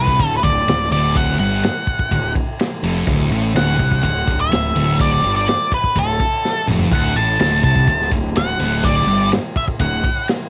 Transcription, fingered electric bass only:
0.00 0.17 C2 medium
0.19 0.41 D1 medium
0.43 0.64 D1 medium
0.65 0.88 D1 medium
0.90 1.35 D1 medium
1.38 1.61 G1 medium
2.11 2.33 D1 medium
2.82 3.05 F1 medium
3.07 3.29 D1 loud
3.31 3.54 A1 medium
3.56 3.78 D1 medium
3.79 4.02 C2 medium
4.03 4.26 D1 medium
4.28 4.50 D1 medium
4.52 4.74 D1 medium
4.75 5.20 D1 loud
5.24 5.46 G1 loud
5.96 6.18 D1 medium
6.68 6.90 F1 medium
6.91 7.14 D1 medium
7.16 7.38 A1 medium
7.39 7.62 D1 medium
7.64 7.86 C2 medium
7.88 8.10 D1 medium
8.12 8.34 D1 medium
8.35 8.58 D1 medium
8.59 9.04 D1 medium
9.06 9.29 G1 loud
9.80 10.02 D1 medium

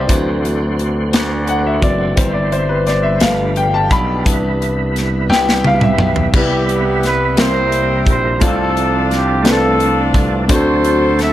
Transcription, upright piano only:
0.00 0.07 E3 soft
0.00 0.11 B3 medium
0.00 0.57 C5 medium
0.00 0.12 D5 medium
0.00 0.11 D#5 medium
0.00 0.11 E5 medium
0.00 0.11 F5 medium
0.00 0.11 G5 medium
0.00 0.11 G#5 medium
0.00 0.11 A5 medium
0.07 1.09 E3 soft
0.07 1.09 F#3 soft
0.07 1.10 C4 medium
1.49 1.65 F#5 medium
1.67 1.84 E5 medium
1.81 2.14 E3 soft
1.81 2.14 F#3 soft
1.81 2.14 C4 soft
1.81 2.19 D5 medium
2.15 2.63 E3 medium
2.15 2.63 G3 soft
2.15 2.64 C4 medium
2.15 2.31 C5 medium
2.29 2.34 E5 medium
2.34 2.52 D5 medium
2.52 2.70 C5 medium
2.69 2.88 B4 medium
2.87 3.05 D5 medium
3.03 3.22 E5 medium
3.21 4.22 F3 medium
3.21 4.22 A3 soft
3.21 4.22 B3 medium
3.21 3.58 F5 medium
3.57 3.73 G5 medium
3.74 3.92 A5 medium
3.92 4.57 B5 medium
4.24 6.29 E3 soft
4.24 6.30 B3 soft
4.24 6.30 D4 medium
5.30 5.66 G5 loud
5.67 5.73 F5 medium
5.75 5.82 F5 medium
5.83 6.31 E5 medium
6.34 7.35 C3 medium
6.34 7.23 G3 medium
6.34 7.23 B3 medium
6.34 7.23 E4 medium
6.34 7.24 B4 medium
7.37 8.38 C3 medium
7.37 8.26 G3 medium
7.37 8.26 A#3 medium
7.37 8.27 C4 medium
7.37 8.26 E4 medium
7.37 8.27 A#4 medium
8.41 9.42 C3 medium
8.41 9.30 A3 medium
8.41 9.30 C4 medium
8.41 9.30 D4 medium
8.41 9.30 F4 medium
8.41 9.30 C5 medium
9.43 10.33 A3 medium
9.43 10.33 C4 medium
9.43 10.33 D4 medium
9.43 10.33 F4 medium
9.43 10.34 B4 medium
10.48 11.33 D3 medium
10.48 11.33 A3 medium
10.48 11.33 C4 medium
10.48 11.33 D4 medium
10.48 11.33 F#4 medium
10.48 11.33 C5 medium

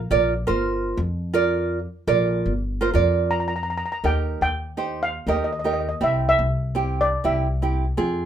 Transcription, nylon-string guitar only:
0.11 0.33 F4 medium
0.11 0.33 A#4 medium
0.11 0.33 D5 medium
0.47 0.99 F4 medium
0.47 0.99 A#4 medium
0.47 0.99 C5 medium
1.34 1.78 F4 medium
1.34 1.78 A#4 medium
1.34 1.79 D5 medium
2.08 2.52 F4 medium
2.08 2.52 A#4 medium
2.08 2.52 D5 medium
2.81 2.89 F4 medium
2.81 2.89 A#4 medium
2.81 2.89 C5 medium
2.94 3.52 F4 medium
2.94 3.53 A#4 medium
2.94 3.53 D5 medium
4.04 4.49 D#4 medium
4.04 4.49 G4 medium
4.04 4.49 A#4 medium
4.77 5.07 D#4 medium
4.77 5.08 G4 medium
4.77 5.08 C5 medium
5.27 5.50 D#4 medium
5.27 5.50 G4 medium
5.27 5.50 A#4 medium
5.64 5.87 D#4 medium
5.64 5.87 G4 medium
5.64 5.87 A#4 medium
6.01 6.45 C4 medium
6.01 6.46 E4 medium
6.01 6.46 G4 medium
6.75 7.05 C4 medium
6.75 7.05 E4 medium
6.75 7.05 G4 medium
7.24 7.46 C4 medium
7.24 7.47 E4 medium
7.24 7.47 G4 medium
7.62 7.84 C4 medium
7.62 7.84 E4 medium
7.62 7.84 G4 medium
7.97 8.26 C4 medium
7.97 8.26 F4 medium
7.97 8.26 G#4 medium

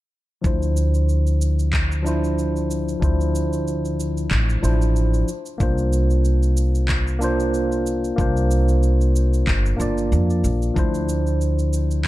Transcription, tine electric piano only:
0.41 2.01 F3 medium
0.41 2.01 D4 medium
0.41 2.02 E4 medium
0.46 2.03 C5 medium
2.03 2.97 F3 medium
2.03 2.98 D4 medium
2.03 2.99 E4 medium
2.08 3.00 C5 medium
3.00 4.59 F3 medium
3.00 4.60 D4 medium
3.00 4.60 E4 medium
3.05 4.61 C5 medium
4.62 5.26 F3 medium
4.62 5.26 D4 medium
4.62 5.26 E4 medium
4.62 5.27 C5 loud
5.58 7.17 A#3 medium
5.58 7.18 D4 medium
5.58 7.19 F4 medium
5.63 7.19 C5 medium
7.19 8.14 A#3 medium
7.19 8.14 D4 medium
7.19 8.15 F4 medium
7.24 8.16 C5 loud
8.16 9.75 A#3 medium
8.16 9.76 D4 medium
8.16 9.77 F4 medium
8.21 9.77 C5 medium
9.76 10.71 A#3 medium
9.76 10.72 D4 medium
9.76 10.73 F4 medium
9.81 10.74 D5 medium
10.74 12.07 F3 medium
10.74 12.07 D4 medium
10.74 12.07 E4 medium
10.79 12.07 C5 medium

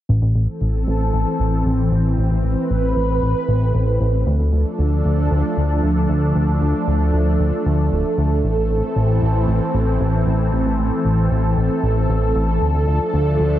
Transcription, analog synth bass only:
0.09 0.21 A1 medium
0.22 0.34 A1 medium
0.35 0.47 A1 medium
0.61 0.85 A1 medium
0.87 1.11 A1 medium
1.13 1.25 A1 medium
1.39 1.63 A1 medium
1.65 1.89 A1 medium
1.92 2.16 A1 loud
2.18 2.30 A1 loud
2.31 2.43 A1 medium
2.44 2.56 A1 medium
2.70 2.94 A1 medium
2.96 3.20 A1 medium
3.22 3.34 A1 loud
3.48 3.72 A1 medium
3.74 3.98 A1 medium
4.00 4.24 A1 loud
4.26 4.38 D2 loud
4.39 4.51 D2 medium
4.53 4.65 D2 medium
4.79 5.03 D2 medium
5.05 5.29 D2 medium
5.31 5.43 D2 loud
5.57 5.81 D2 medium
5.83 6.07 D2 loud
6.09 6.33 D2 loud
6.35 6.47 D2 medium
6.48 6.60 D2 medium
6.61 6.73 D2 medium
6.87 7.11 D2 medium
7.13 7.37 D2 medium
7.39 7.51 D2 medium
7.66 7.90 D2 medium
7.92 8.04 D1 medium
8.18 8.42 D2 medium
8.44 8.56 A1 medium
8.57 8.69 A1 medium
8.70 8.82 A1 medium
8.96 9.20 A1 medium
9.22 9.46 A1 medium
9.48 9.60 A1 medium
9.74 9.98 A1 medium
10.00 10.24 A1 medium
10.26 10.50 A1 loud
10.53 10.65 A1 loud
10.66 10.78 A1 medium
10.79 10.91 A1 medium
11.05 11.29 A1 medium
11.31 11.55 A1 medium
11.57 11.69 A1 medium
11.83 12.07 A1 medium
12.09 12.33 A1 loud
12.35 12.59 A1 loud
12.61 12.73 D2 loud
12.74 12.86 D2 medium
12.87 12.99 D2 medium
13.13 13.37 D2 medium
13.39 13.59 D2 medium

